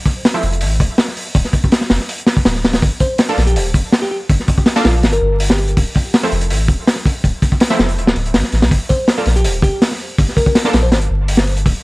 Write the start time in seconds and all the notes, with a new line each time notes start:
0.06 kick, open hi-hat
0.25 snare, open hi-hat
0.34 F3 A3 C4 E4, snare
0.43 F1, open hi-hat
0.52 closed hi-hat
0.61 A1, open hi-hat
0.80 D1, kick, open hi-hat
0.98 snare, open hi-hat
1.08 snare
1.17 open hi-hat
1.35 D1, kick, open hi-hat
1.45 snare
1.53 kick, open hi-hat
1.64 kick
1.72 snare, open hi-hat
1.81 snare
1.90 F1, snare, open hi-hat
2.00 snare
2.09 open hi-hat
2.18 closed hi-hat
2.27 snare, open hi-hat
2.37 kick
2.45 D1, snare, open hi-hat
2.55 snare
2.64 snare, open hi-hat
2.73 snare, open hi-hat
2.82 G1, kick, open hi-hat
3.00 C5, kick, open hi-hat
3.18 snare, open hi-hat
3.29 A#3 D4 F4 A4, snare
3.37 A#1, snare, open hi-hat
3.47 G4, closed hi-hat
3.56 D1, open hi-hat
3.74 G1, kick, open hi-hat
3.93 snare, open hi-hat
4.02 G4, snare
4.11 G4
4.30 G1, kick, open hi-hat
4.40 snare
4.48 kick, open hi-hat
4.58 kick
4.66 snare, open hi-hat
4.76 A#3 D4 F4 A4, snare
4.84 A#1 F4, snare, open hi-hat
5.03 G1, snare, open hi-hat
5.13 A#4, closed hi-hat
5.21 G1
5.40 open hi-hat
5.50 G4, snare
5.58 open hi-hat
5.68 closed hi-hat
5.77 D1, kick, open hi-hat
5.95 kick, open hi-hat
6.14 snare, open hi-hat
6.23 F3 A3 C4 E4, snare
6.32 F1, open hi-hat
6.41 closed hi-hat
6.50 A1, open hi-hat
6.68 D1, kick, open hi-hat
6.87 snare, open hi-hat
6.96 snare
7.05 kick, open hi-hat
7.24 D1, kick, open hi-hat
7.42 kick, open hi-hat
7.52 kick
7.60 snare, open hi-hat
7.70 F3 A3 C4 E4, snare
7.79 F1, snare
7.89 open hi-hat
7.97 D1, closed hi-hat
8.07 snare
8.16 D1, open hi-hat
8.26 closed hi-hat
8.34 A1, snare, open hi-hat
8.44 snare
8.52 A1, snare, open hi-hat
8.62 C2, snare, open hi-hat
8.71 G1, kick, open hi-hat
8.89 C5, kick, open hi-hat
9.08 snare, open hi-hat
9.17 A#3 D4 F4 A4, snare
9.26 A#1, snare, open hi-hat
9.36 G4, closed hi-hat
9.45 D1, open hi-hat
9.62 G1 G4, kick, open hi-hat
9.82 snare, open hi-hat
9.91 snare
10.18 G1, kick, open hi-hat
10.28 snare
10.37 A#4, kick, open hi-hat
10.46 kick
10.55 snare, open hi-hat
10.64 A#3 D4 F4 A4, snare
10.73 A#1, snare, open hi-hat
10.83 C5
10.92 G1 C5, snare, open hi-hat
11.02 closed hi-hat
11.10 G1
11.28 open hi-hat
11.37 snare
11.47 open hi-hat
11.57 closed hi-hat
11.66 D1, kick, open hi-hat